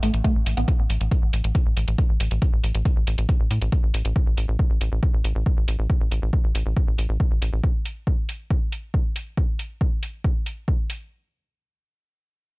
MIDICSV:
0, 0, Header, 1, 4, 480
1, 0, Start_track
1, 0, Tempo, 434783
1, 750, Time_signature, 4, 2, 24, 8
1, 13894, End_track
2, 0, Start_track
2, 0, Title_t, "Synth arpeggio sound"
2, 0, Program_c, 0, 84
2, 31, Note_on_c, 0, 57, 80
2, 96, Note_off_c, 0, 57, 0
2, 269, Note_on_c, 0, 57, 96
2, 367, Note_off_c, 0, 57, 0
2, 631, Note_on_c, 0, 59, 96
2, 727, Note_off_c, 0, 59, 0
2, 13894, End_track
3, 0, Start_track
3, 0, Title_t, "Analog synth bass"
3, 0, Program_c, 1, 38
3, 30, Note_on_c, 1, 33, 102
3, 122, Note_off_c, 1, 33, 0
3, 150, Note_on_c, 1, 33, 94
3, 241, Note_off_c, 1, 33, 0
3, 391, Note_on_c, 1, 33, 85
3, 481, Note_off_c, 1, 33, 0
3, 509, Note_on_c, 1, 33, 96
3, 601, Note_off_c, 1, 33, 0
3, 630, Note_on_c, 1, 33, 93
3, 721, Note_off_c, 1, 33, 0
3, 871, Note_on_c, 1, 33, 90
3, 961, Note_off_c, 1, 33, 0
3, 989, Note_on_c, 1, 33, 103
3, 1081, Note_off_c, 1, 33, 0
3, 1111, Note_on_c, 1, 33, 91
3, 1201, Note_off_c, 1, 33, 0
3, 1350, Note_on_c, 1, 33, 86
3, 1440, Note_off_c, 1, 33, 0
3, 1470, Note_on_c, 1, 33, 103
3, 1562, Note_off_c, 1, 33, 0
3, 1591, Note_on_c, 1, 33, 89
3, 1681, Note_off_c, 1, 33, 0
3, 1830, Note_on_c, 1, 33, 87
3, 1921, Note_off_c, 1, 33, 0
3, 1950, Note_on_c, 1, 33, 102
3, 2042, Note_off_c, 1, 33, 0
3, 2071, Note_on_c, 1, 33, 92
3, 2161, Note_off_c, 1, 33, 0
3, 2310, Note_on_c, 1, 33, 84
3, 2400, Note_off_c, 1, 33, 0
3, 2429, Note_on_c, 1, 33, 97
3, 2522, Note_off_c, 1, 33, 0
3, 2551, Note_on_c, 1, 33, 94
3, 2641, Note_off_c, 1, 33, 0
3, 2791, Note_on_c, 1, 33, 89
3, 2881, Note_off_c, 1, 33, 0
3, 2909, Note_on_c, 1, 33, 97
3, 3001, Note_off_c, 1, 33, 0
3, 3031, Note_on_c, 1, 33, 91
3, 3121, Note_off_c, 1, 33, 0
3, 3271, Note_on_c, 1, 33, 89
3, 3361, Note_off_c, 1, 33, 0
3, 3390, Note_on_c, 1, 33, 101
3, 3482, Note_off_c, 1, 33, 0
3, 3510, Note_on_c, 1, 33, 90
3, 3601, Note_off_c, 1, 33, 0
3, 3751, Note_on_c, 1, 33, 87
3, 3841, Note_off_c, 1, 33, 0
3, 3870, Note_on_c, 1, 45, 102
3, 3962, Note_off_c, 1, 45, 0
3, 3991, Note_on_c, 1, 33, 95
3, 4081, Note_off_c, 1, 33, 0
3, 4230, Note_on_c, 1, 33, 85
3, 4321, Note_off_c, 1, 33, 0
3, 4348, Note_on_c, 1, 33, 97
3, 4441, Note_off_c, 1, 33, 0
3, 4469, Note_on_c, 1, 33, 94
3, 4560, Note_off_c, 1, 33, 0
3, 4709, Note_on_c, 1, 33, 87
3, 4800, Note_off_c, 1, 33, 0
3, 4827, Note_on_c, 1, 33, 100
3, 4920, Note_off_c, 1, 33, 0
3, 4949, Note_on_c, 1, 33, 93
3, 5040, Note_off_c, 1, 33, 0
3, 5189, Note_on_c, 1, 33, 85
3, 5280, Note_off_c, 1, 33, 0
3, 5308, Note_on_c, 1, 33, 98
3, 5401, Note_off_c, 1, 33, 0
3, 5430, Note_on_c, 1, 33, 91
3, 5520, Note_off_c, 1, 33, 0
3, 5670, Note_on_c, 1, 33, 87
3, 5761, Note_off_c, 1, 33, 0
3, 5788, Note_on_c, 1, 33, 98
3, 5881, Note_off_c, 1, 33, 0
3, 5910, Note_on_c, 1, 33, 92
3, 6000, Note_off_c, 1, 33, 0
3, 6151, Note_on_c, 1, 33, 84
3, 6241, Note_off_c, 1, 33, 0
3, 6269, Note_on_c, 1, 33, 97
3, 6361, Note_off_c, 1, 33, 0
3, 6390, Note_on_c, 1, 33, 89
3, 6481, Note_off_c, 1, 33, 0
3, 6630, Note_on_c, 1, 33, 89
3, 6721, Note_off_c, 1, 33, 0
3, 6749, Note_on_c, 1, 33, 96
3, 6841, Note_off_c, 1, 33, 0
3, 6871, Note_on_c, 1, 33, 91
3, 6961, Note_off_c, 1, 33, 0
3, 7110, Note_on_c, 1, 33, 85
3, 7200, Note_off_c, 1, 33, 0
3, 7229, Note_on_c, 1, 33, 98
3, 7321, Note_off_c, 1, 33, 0
3, 7350, Note_on_c, 1, 33, 89
3, 7441, Note_off_c, 1, 33, 0
3, 7590, Note_on_c, 1, 33, 85
3, 7681, Note_off_c, 1, 33, 0
3, 7708, Note_on_c, 1, 33, 99
3, 7801, Note_off_c, 1, 33, 0
3, 7829, Note_on_c, 1, 33, 95
3, 7920, Note_off_c, 1, 33, 0
3, 8070, Note_on_c, 1, 33, 87
3, 8160, Note_off_c, 1, 33, 0
3, 8189, Note_on_c, 1, 33, 99
3, 8281, Note_off_c, 1, 33, 0
3, 8310, Note_on_c, 1, 33, 92
3, 8400, Note_off_c, 1, 33, 0
3, 13894, End_track
4, 0, Start_track
4, 0, Title_t, "Drums"
4, 30, Note_on_c, 9, 46, 116
4, 141, Note_off_c, 9, 46, 0
4, 151, Note_on_c, 9, 42, 72
4, 262, Note_off_c, 9, 42, 0
4, 270, Note_on_c, 9, 36, 121
4, 271, Note_on_c, 9, 42, 67
4, 381, Note_off_c, 9, 36, 0
4, 381, Note_off_c, 9, 42, 0
4, 511, Note_on_c, 9, 46, 114
4, 622, Note_off_c, 9, 46, 0
4, 632, Note_on_c, 9, 42, 69
4, 743, Note_off_c, 9, 42, 0
4, 750, Note_on_c, 9, 36, 122
4, 752, Note_on_c, 9, 42, 67
4, 861, Note_off_c, 9, 36, 0
4, 862, Note_off_c, 9, 42, 0
4, 991, Note_on_c, 9, 46, 107
4, 1101, Note_off_c, 9, 46, 0
4, 1112, Note_on_c, 9, 42, 67
4, 1223, Note_off_c, 9, 42, 0
4, 1230, Note_on_c, 9, 36, 116
4, 1232, Note_on_c, 9, 42, 64
4, 1341, Note_off_c, 9, 36, 0
4, 1342, Note_off_c, 9, 42, 0
4, 1471, Note_on_c, 9, 46, 107
4, 1581, Note_off_c, 9, 46, 0
4, 1593, Note_on_c, 9, 42, 69
4, 1703, Note_off_c, 9, 42, 0
4, 1711, Note_on_c, 9, 36, 125
4, 1711, Note_on_c, 9, 42, 65
4, 1821, Note_off_c, 9, 36, 0
4, 1821, Note_off_c, 9, 42, 0
4, 1951, Note_on_c, 9, 46, 114
4, 2061, Note_off_c, 9, 46, 0
4, 2073, Note_on_c, 9, 42, 67
4, 2184, Note_off_c, 9, 42, 0
4, 2191, Note_on_c, 9, 36, 124
4, 2191, Note_on_c, 9, 42, 67
4, 2301, Note_off_c, 9, 36, 0
4, 2301, Note_off_c, 9, 42, 0
4, 2430, Note_on_c, 9, 46, 114
4, 2541, Note_off_c, 9, 46, 0
4, 2551, Note_on_c, 9, 42, 69
4, 2662, Note_off_c, 9, 42, 0
4, 2670, Note_on_c, 9, 42, 64
4, 2671, Note_on_c, 9, 36, 119
4, 2781, Note_off_c, 9, 36, 0
4, 2781, Note_off_c, 9, 42, 0
4, 2910, Note_on_c, 9, 46, 107
4, 3021, Note_off_c, 9, 46, 0
4, 3032, Note_on_c, 9, 42, 67
4, 3142, Note_off_c, 9, 42, 0
4, 3150, Note_on_c, 9, 42, 62
4, 3151, Note_on_c, 9, 36, 115
4, 3261, Note_off_c, 9, 36, 0
4, 3261, Note_off_c, 9, 42, 0
4, 3391, Note_on_c, 9, 46, 107
4, 3501, Note_off_c, 9, 46, 0
4, 3512, Note_on_c, 9, 42, 65
4, 3622, Note_off_c, 9, 42, 0
4, 3630, Note_on_c, 9, 42, 63
4, 3631, Note_on_c, 9, 36, 121
4, 3741, Note_off_c, 9, 36, 0
4, 3741, Note_off_c, 9, 42, 0
4, 3871, Note_on_c, 9, 46, 110
4, 3981, Note_off_c, 9, 46, 0
4, 3992, Note_on_c, 9, 42, 65
4, 4102, Note_off_c, 9, 42, 0
4, 4111, Note_on_c, 9, 36, 123
4, 4111, Note_on_c, 9, 42, 63
4, 4221, Note_off_c, 9, 36, 0
4, 4221, Note_off_c, 9, 42, 0
4, 4351, Note_on_c, 9, 46, 106
4, 4461, Note_off_c, 9, 46, 0
4, 4471, Note_on_c, 9, 42, 65
4, 4582, Note_off_c, 9, 42, 0
4, 4591, Note_on_c, 9, 36, 118
4, 4701, Note_off_c, 9, 36, 0
4, 4830, Note_on_c, 9, 46, 101
4, 4940, Note_off_c, 9, 46, 0
4, 5070, Note_on_c, 9, 36, 114
4, 5181, Note_off_c, 9, 36, 0
4, 5310, Note_on_c, 9, 46, 99
4, 5421, Note_off_c, 9, 46, 0
4, 5550, Note_on_c, 9, 36, 119
4, 5661, Note_off_c, 9, 36, 0
4, 5790, Note_on_c, 9, 46, 110
4, 5900, Note_off_c, 9, 46, 0
4, 6030, Note_on_c, 9, 36, 118
4, 6141, Note_off_c, 9, 36, 0
4, 6270, Note_on_c, 9, 46, 109
4, 6381, Note_off_c, 9, 46, 0
4, 6510, Note_on_c, 9, 36, 113
4, 6620, Note_off_c, 9, 36, 0
4, 6751, Note_on_c, 9, 46, 98
4, 6862, Note_off_c, 9, 46, 0
4, 6990, Note_on_c, 9, 36, 110
4, 7100, Note_off_c, 9, 36, 0
4, 7231, Note_on_c, 9, 46, 96
4, 7341, Note_off_c, 9, 46, 0
4, 7470, Note_on_c, 9, 36, 114
4, 7580, Note_off_c, 9, 36, 0
4, 7710, Note_on_c, 9, 46, 100
4, 7821, Note_off_c, 9, 46, 0
4, 7950, Note_on_c, 9, 36, 111
4, 8060, Note_off_c, 9, 36, 0
4, 8191, Note_on_c, 9, 46, 101
4, 8301, Note_off_c, 9, 46, 0
4, 8430, Note_on_c, 9, 36, 108
4, 8540, Note_off_c, 9, 36, 0
4, 8671, Note_on_c, 9, 46, 99
4, 8782, Note_off_c, 9, 46, 0
4, 8910, Note_on_c, 9, 36, 104
4, 9020, Note_off_c, 9, 36, 0
4, 9151, Note_on_c, 9, 46, 92
4, 9261, Note_off_c, 9, 46, 0
4, 9390, Note_on_c, 9, 36, 108
4, 9500, Note_off_c, 9, 36, 0
4, 9631, Note_on_c, 9, 46, 100
4, 9741, Note_off_c, 9, 46, 0
4, 9870, Note_on_c, 9, 36, 111
4, 9980, Note_off_c, 9, 36, 0
4, 10111, Note_on_c, 9, 46, 99
4, 10221, Note_off_c, 9, 46, 0
4, 10350, Note_on_c, 9, 36, 107
4, 10460, Note_off_c, 9, 36, 0
4, 10590, Note_on_c, 9, 46, 98
4, 10700, Note_off_c, 9, 46, 0
4, 10830, Note_on_c, 9, 36, 108
4, 10941, Note_off_c, 9, 36, 0
4, 11070, Note_on_c, 9, 46, 93
4, 11181, Note_off_c, 9, 46, 0
4, 11310, Note_on_c, 9, 36, 109
4, 11420, Note_off_c, 9, 36, 0
4, 11550, Note_on_c, 9, 46, 99
4, 11661, Note_off_c, 9, 46, 0
4, 11790, Note_on_c, 9, 36, 110
4, 11901, Note_off_c, 9, 36, 0
4, 12031, Note_on_c, 9, 46, 99
4, 12141, Note_off_c, 9, 46, 0
4, 13894, End_track
0, 0, End_of_file